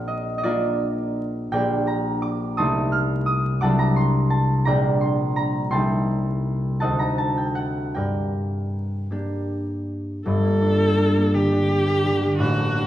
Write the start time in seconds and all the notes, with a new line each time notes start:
Already playing: A#1 F4 A#4 D5 F5 G5
0.08 D#5
0.38 D#5
0.43 A#3 D4 F4 A#4 D5
1.52 A#1 A#3 G4 A#4 D5 G5
1.57 D4
1.87 A#5
2.22 D6
2.57 C2 A3 D#4 A4 A5 C6 D#6
2.92 F6
3.26 D#6
3.61 C2 F#3 D4 A4 F#5 A5 D6
3.79 A#5
3.96 C6
4.30 A5
4.65 A#1 G3 D4 A#4 D5 G5 A#5
5.01 C6
5.36 A#5
5.70 C2 G3 A4 G5 A5 C6
5.77 D#4
6.80 D2 C4 D#4 A4 D#5 F#5 A5
6.99 A#5
7.18 A5
7.37 G5
7.55 F#5
7.94 G2 A#4 D5 G5
9.11 A#3 D4 G4
10.25 G1 G2 A4
10.45 A#3
10.62 D4
10.80 G4
10.98 D4
11.17 A#3
11.34 D3 G4
11.52 D4
11.69 G4
11.86 A#3
12.05 D3
12.22 A#3
12.39 A1 A2 F#4
12.58 A3
12.75 D4